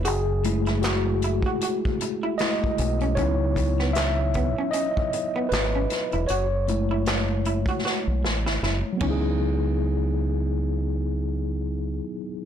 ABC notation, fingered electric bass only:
X:1
M:4/4
L:1/16
Q:"Swing 16ths" 1/4=77
K:C#m
V:1 name="Fingered electric bass" clef=bass
F,,,6- F,,, z6 z B,,,2 | C,,6- C,, z4 z G,,,2 z E,,, | F,,,6- F,,, z2 B,,, A,,, G,,, F,,, z C,,2- | C,,16 |]